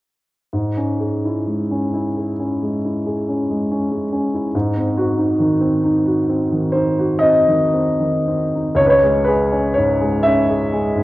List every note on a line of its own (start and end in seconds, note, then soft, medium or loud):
0.53 4.51 G#2 soft
0.77 1.16 C#4 soft
1.00 1.38 G#4 soft
1.26 1.62 E4 soft
1.48 1.84 G#3 soft
1.72 2.08 C#4 soft
1.94 2.30 E4 soft
2.17 2.53 G#4 soft
2.40 2.76 C#4 soft
2.63 2.98 G#3 soft
2.85 3.20 E4 soft
3.06 3.41 G#4 soft
3.28 3.62 C#4 soft
3.50 3.83 G#3 soft
3.71 4.04 C#4 soft
3.92 4.25 G#3 soft
4.12 4.46 C#4 soft
4.34 4.55 E4 soft
4.55 8.75 G#2 medium
4.76 5.10 C4 soft
4.97 5.31 F#4 soft
5.18 5.52 D#4 soft
5.40 5.74 D#3 soft
5.61 5.96 C4 soft
5.83 6.19 D#4 soft
6.05 6.43 F#4 soft
6.29 6.66 C4 soft
6.52 6.90 D#3 soft
6.72 7.13 D#4 soft
6.72 7.21 C5 medium
6.99 7.38 F#4 soft
7.19 7.63 C4 soft
7.19 8.76 D#5 medium
7.49 7.90 D#3 soft
7.74 8.17 C4 soft
8.00 8.44 D#3 soft
8.28 8.69 C4 soft
8.55 8.79 D#4 soft
8.75 11.03 C#2 soft
8.75 8.85 C#5 medium
8.86 8.93 B4 soft
8.86 9.25 C#5 medium
9.04 9.42 G#3 soft
9.24 9.67 G#4 soft
9.24 9.75 B4 medium
9.52 9.92 C#4 soft
9.74 10.16 G#2 soft
9.74 10.24 C#5 medium
10.01 10.40 G#3 soft
10.23 10.64 C#4 soft
10.23 11.03 E5 medium
10.50 10.86 G#4 soft
10.73 11.03 G#3 soft
10.96 11.03 G#2 soft